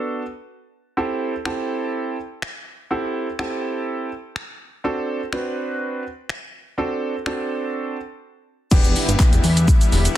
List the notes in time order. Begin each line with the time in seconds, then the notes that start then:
Already playing: B3 D4 F#4 A4
0.97 C4 E4 G4 A4
1.45 C4 E4 G4 A4, finger snap
2.42 finger snap
2.91 C4 E4 G4 A4
3.39 C4 E4 G4 A4, finger snap
4.36 finger snap
4.84 C4 D4 F#4 A4
5.32 C4 D4 F#4 B4, finger snap
6.29 finger snap
6.78 C4 D4 F#4 A4
7.26 C4 D4 F#4 A4, finger snap
8.71 E1 D3 G3 B3 D4 E4 G4, kick, crash, downlifter, shaker
8.84 closed hi-hat, shaker
8.96 open hi-hat, shaker
9.08 G1, closed hi-hat, shaker
9.20 kick, clap, shaker
9.33 E1, closed hi-hat, shaker
9.44 E2, open hi-hat, shaker
9.57 closed hi-hat, shaker
9.68 kick, shaker
9.81 closed hi-hat, shaker
9.92 E1, open hi-hat, shaker
10.05 closed hi-hat, shaker